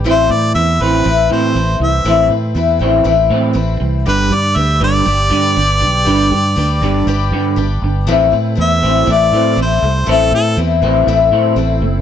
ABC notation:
X:1
M:4/4
L:1/8
Q:1/4=120
K:Am
V:1 name="Harmonica"
c d e B2 c2 e- | e z6 z | B d e d4- d- | d6 z2 |
z2 e2 d2 c2 | A A z6 |]
V:2 name="Tonewheel organ"
z8 | z8 | z8 | z8 |
[CEA]8- | [CEA]8 |]
V:3 name="Twelve-string acoustic guitar"
[A,,E,A,CEB]2 [A,CEB] [A,CEB] [A,,E,A,CEB]2 [A,CEB]2 | [A,,E,A,CEB] [A,CEB] [A,CEB] [A,CEB] [A,,E,A,CEB]2 [A,CEB]2 | [G,DGB]2 [G,DGB] [DGB] [G,DGB]2 [G,DGB]2 | [G,DGB] [DGB] [G,DGB] [DGB] [G,DGB]2 [G,DGB]2 |
[A,,E,A,CEB] [A,CEB] [A,CEB] [A,CEB] [A,,E,A,CEB]2 [A,CE]2 | [A,,E,A,CEB]2 [A,CEB] [A,CEB] [A,,E,A,CEB]2 [A,CEB]2 |]
V:4 name="Clean electric guitar" clef=bass
[A,,E,C] [A,,E,] [A,,E,] [A,,E,C] [A,,E,] [A,,E,C] [A,,E,] [A,,E,] | [A,,E,C] [A,,E,] [A,,E,] [A,,E,C] [A,,E,] [A,,E,C] [A,,E,] [A,,E,] | [G,,D,G,] [G,,D,] [G,,D,] [G,,D,G,] [G,,D,] [G,,D,G,] [G,,D,] [G,,D,] | [G,,D,G,] [G,,D,] [G,,D,] [G,,D,G,] [G,,D,] [G,,D,G,] [G,,D,] [G,,D,] |
[A,,A,C] [A,,A,] [A,,A,] [A,,A,C] [A,,A,] [A,,A,C] [A,,A,] [A,,A,] | [A,,A,C] [A,,A,] [A,,A,] [A,,A,C] [A,,A,] [A,,A,C] [A,,A,] [A,,A,] |]
V:5 name="Fingered electric bass" clef=bass
A,,, A,, E,, A,,, A,,, A,, A,,, C,, | A,,, A,, E,, A,,, A,,, A,, A,,, C,, | G,,, G,, D,, G,,, G,,, G,, G,,, B,,, | G,,, G,, D,, G,,, G,,, G,, G,,, G,,, |
A,,, A,, E,, A,,, A,,, A,, A,,, C,, | A,,, A,, E,, A,,, A,,, A,, A,,, ^F,,, |]